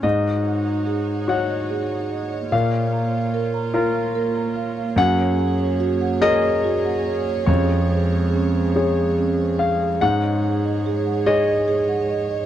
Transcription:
0.02 grand piano G#2 D#5, string section D#4 F#4 C#5, marimba G#4
0.24 marimba D#5
0.44 marimba F#5
0.65 marimba D#5
0.86 marimba G#4
1.08 marimba F#5
1.28 grand piano F#4 C#5 F#5, marimba D#5
1.50 marimba D#5
1.70 marimba G#4
1.90 marimba F#5
2.11 marimba D#5
2.31 marimba D#5
2.51 grand piano A#2 F5, string section A#3 F4, marimba A#4
2.72 marimba F5
2.93 marimba A#5
3.13 marimba F5
3.34 marimba A#4
3.54 marimba A#5
3.74 grand piano F4 A#4, marimba F5
3.95 marimba F5
4.15 marimba A#4
4.36 marimba A#5
4.56 marimba F5
4.77 marimba F5
4.96 grand piano F#2 F#5, marimba F#4, string section G#4 C#5
5.19 marimba C#5
5.39 marimba F#5
5.60 marimba C#5
5.80 marimba F#4
6.01 marimba F#5
6.21 grand piano G#4 A#4 D#5, marimba C#5
6.43 marimba C#5
6.64 marimba F#4
6.85 marimba F#5
7.06 marimba C#5
7.27 marimba C#5
7.46 grand piano F2 C#5, string section G#3, marimba C#4
7.70 marimba G#4
7.91 marimba C5
8.12 marimba G#4
8.34 marimba C#4
8.55 marimba C5
8.76 grand piano G#4 C#5, marimba G#4
8.98 marimba G#4
9.19 marimba C#4
9.39 marimba C5
9.59 marimba G#4, grand piano F5
9.81 marimba G#4
10.01 grand piano G#2 F#5, marimba G#4, string section G#4 C#5
10.23 marimba D#5
10.44 marimba F#5
10.65 marimba D#5
10.86 marimba G#4
11.07 marimba F#5
11.26 grand piano G#4 C#5 D#5, marimba D#5
11.48 marimba D#5
11.68 marimba G#4
11.89 marimba F#5
12.10 marimba D#5
12.31 marimba D#5

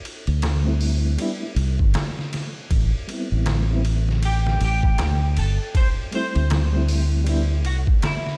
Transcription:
0.05 ride
0.27 fingered electric bass D2, ride
0.42 snare, ride, darbuka tek
0.63 reed electric piano G3 A3 C4
0.68 reed electric piano E4
0.81 open hi-hat
1.17 reed electric piano G3 B3 D4, ride
1.22 reed electric piano E4
1.56 fingered electric bass C2, ride
1.79 fingered electric bass G1, kick
1.94 snare, ride, darbuka tek
2.19 snare
2.33 snare, ride
2.71 fingered electric bass A1, kick, ride
3.07 reed electric piano G3 B3 C4, ride
3.12 reed electric piano E4
3.32 fingered electric bass A1
3.46 snare, ride, darbuka tek
3.69 reed electric piano G3 B3 C4
3.73 reed electric piano E4
3.85 ride
4.09 snare
4.23 clean electric guitar G4, ride
4.47 snare
4.61 fingered electric bass A1, clean electric guitar G4, ride
4.83 kick
4.98 fingered electric bass D2, snare, ride, darbuka tek
5.37 fingered electric bass G1, clean electric guitar A4, ride
5.75 clean electric guitar C5, kick, ride
6.11 reed electric piano G3 A3 C4, clean electric guitar C5, ride
6.16 reed electric piano E4
6.36 fingered electric bass D2, ride
6.50 snare, ride, darbuka tek
6.72 reed electric piano G3 A3 C4
6.77 reed electric piano E4
6.88 open hi-hat
7.24 reed electric piano G3 B3 D4, ride
7.29 reed electric piano E4
7.65 fingered electric bass C2, clean electric guitar F#4, ride
7.87 kick
8.02 clean electric guitar E4, snare, ride, darbuka tek
8.27 snare

